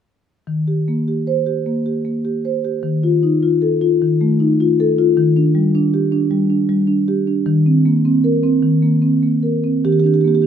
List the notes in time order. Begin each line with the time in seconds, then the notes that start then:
0.47 D#3
0.68 G4
0.88 A#3
1.08 G4
1.27 C5
1.46 G4
1.66 A#3
1.86 G4
2.05 A#3
2.25 G4
2.45 C5
2.65 G4
2.83 D#3
3.03 F4
3.23 D#4
3.43 F4
3.62 A4
3.81 F4
4.02 D#3
4.21 A3
4.40 D#4
4.61 F4
4.80 A4
4.99 F4
5.17 D#3
5.36 D4
5.55 G3
5.75 D4
5.94 G4
6.12 D4
6.31 G3
6.50 D4
6.69 G3
6.87 D4
7.08 G4
7.27 D4
7.46 D#3
7.66 C4
7.86 A#3
8.05 C4
8.24 A#4
8.43 C4
8.62 D#3
8.82 A#3
9.02 C4
9.23 A#3
9.43 A#4
9.64 C4
9.85 D#3 G4
9.92 G4
10.00 G4
10.04 D4 G4
10.14 G4
10.21 A#3 G4
10.28 G4
10.35 G4
10.42 D4 G4